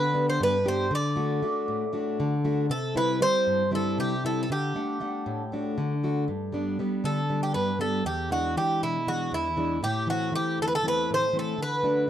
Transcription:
Already playing: D3 B4
0.14 B3 D4 G4
0.30 C5
0.40 G2 B4
0.65 B3 D4 G4 C5
0.91 D3
0.95 D5
1.16 A3 D4 F#4
1.42 A3 D4 F#4
1.68 A2
1.93 A3 D4 F#4
2.20 D3
2.45 A3 D4 F#4
2.70 C3 A4
2.94 G3 C4 E4 B4
3.20 G3 C4 E4 C5
3.47 G2
3.71 G3 C4 E4
3.75 A4
3.98 C3 G4
4.24 G3 C4 E4 A4
4.43 A4
4.50 D3 G4
4.75 A3 D4 F#5
5.00 A3 D4 F#5
5.26 A2
5.52 A3 D4 F#4
5.78 D3
6.04 A3 D4 F#4
6.28 G2
6.52 G3 B3 D4
6.79 G3 B3 D4
7.04 D3 A4
7.29 G3 B3 D4
7.43 G4
7.54 G2 B4
7.79 G3 B3 D4 A4
8.05 E2 G4
8.30 E3 G#3 D4 F#4
8.57 E3 G#3 D4 G4
8.82 B2 E4
9.07 E3 G#3 D4 F#4
9.32 E2 E4
9.57 E3 G#3 D4
9.83 A2 G4
10.07 E3 A3 C4 F#4
10.32 E3 A3 C4 G4
10.58 E2
10.62 A4
10.68 B4
10.75 A4
10.83 E3 A3 C4
10.88 B4
11.10 A2
11.14 C5
11.33 E3 A3 C4
11.39 A4
11.58 D3
11.63 B4
11.83 A3 D4 F#4

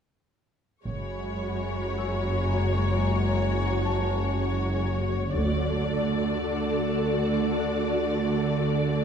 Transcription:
0.86 F#1 F#2 G#3 F#4 C#5 G#5 B5
1.61 A#5
1.98 E6
2.81 C6
3.85 A5
5.35 D2 D3 A3 F#4 A4 D5
7.60 F#6

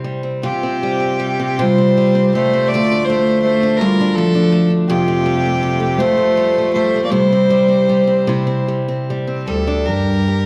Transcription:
Already playing: C3 C4 E4
0.04 G3
0.23 C4
0.43 C3 F4 G4
0.63 C4
0.83 G3
1.00 C4
1.20 G3
1.39 C4
1.59 C3 G3 F4 C5
1.78 C4
1.98 G3
2.15 C4
2.34 G3 A3 C5
2.54 C4
2.68 A3 D5
2.74 D2 F4
2.92 D4
3.05 A3 C5
3.10 A3
3.27 D4
3.42 A3 C5
3.63 D4
3.77 G3 A#4
3.81 D2 F4
4.01 D4
4.15 F3 A3 A4
4.35 D4
4.52 A3
4.70 D4
4.88 F2 C3 F4 G4
5.08 A3
5.26 G3
5.45 A3
5.63 G3
5.80 A3
5.98 F2 A3 F4 C5
6.18 A3
6.37 G3
6.58 A3
6.73 G3 A3 C5
6.96 A3
7.04 A#3 D5
7.10 C3 G3 E4 C5
7.33 C4
7.50 G3
7.68 C4
7.89 G3
8.07 C4
8.27 C3 E4
8.47 C4
8.68 G3
8.88 C4
9.10 G3
9.27 C4
9.47 D2 G3 A4
9.67 D4
9.86 G2 G4 A#4
10.28 G4

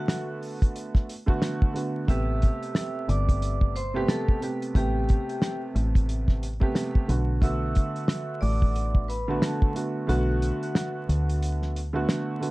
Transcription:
Already playing: D3 A3 B3 F#4 F#5
0.08 cross-stick, snare, closed hi-hat
0.43 open hi-hat
0.62 kick, closed hi-hat
0.76 closed hi-hat
0.95 kick, snare
1.09 closed hi-hat
1.26 D3 A3 B3 F#4, kick
1.42 cross-stick, snare, closed hi-hat
1.62 kick
1.73 D3 A3 B3 F#4, closed hi-hat
2.08 A1 C3 A3 B3 G4 E5 E6, kick, closed hi-hat
2.42 kick, closed hi-hat
2.63 closed hi-hat
2.75 cross-stick, snare, closed hi-hat
3.09 G1 D5 D6, closed hi-hat
3.29 kick, closed hi-hat
3.42 closed hi-hat
3.61 kick
3.76 C5 C6, closed hi-hat
3.94 C3 A3 B3 G4
4.08 A4 A5, cross-stick, snare, closed hi-hat
4.29 kick
4.41 C3 A3 B3 G4, closed hi-hat
4.62 closed hi-hat
4.75 A1 C3 A3 B3 G4 G5, kick, closed hi-hat
5.09 kick, closed hi-hat
5.29 G4 G5, closed hi-hat
5.42 cross-stick, snare, closed hi-hat
5.75 A1, closed hi-hat
5.95 kick, closed hi-hat
6.09 closed hi-hat
6.28 kick, snare
6.43 closed hi-hat
6.60 C3 A3 B3 G4, kick
6.75 cross-stick, snare, closed hi-hat
6.95 kick
7.08 B1 D3 A3 B3 F#4, closed hi-hat
7.41 D3 A3 B3 F#4 E5 E6, kick, closed hi-hat
7.75 kick, closed hi-hat
7.96 closed hi-hat
8.08 cross-stick, snare, closed hi-hat
8.41 A1 D5 D6, open hi-hat
8.62 kick
8.76 closed hi-hat
8.95 kick
9.08 B4 B5, closed hi-hat
9.28 D3 A3 B3 F#4
9.42 A4 A5, cross-stick, snare, closed hi-hat
9.62 kick
9.74 D3 A3 B3 F#4, closed hi-hat
10.07 B1 D3 A3 B3 F#4 F#5, closed hi-hat
10.42 closed hi-hat
10.63 F#4 F#5, closed hi-hat
10.75 cross-stick, snare, closed hi-hat
11.09 D2, closed hi-hat
11.30 closed hi-hat
11.43 closed hi-hat
11.62 snare
11.76 closed hi-hat
11.93 D3 A3 B3 F#4
12.09 cross-stick, snare, closed hi-hat
12.40 D3 A3 B3 F#4, closed hi-hat

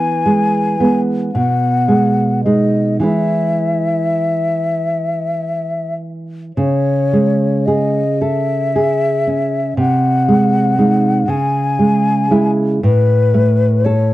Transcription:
Already playing: E3 G#5
0.26 G#3
0.80 G#3 B3
1.32 B2 F#5
1.88 G#3
2.44 G#3 D#4 D#5
3.00 E3 G#3 E4 E5
6.56 C#3 C#5
7.13 G#3
7.66 G#4 D#5
8.21 A4 E5
8.76 G#4
9.27 C#4
9.77 C3 F#5
10.28 G#3
10.78 G#3 D#4
11.28 C#3 G#5
11.79 G#3
12.31 G#3 E4
12.83 A2 B4
13.34 A3
13.85 A4 C#5

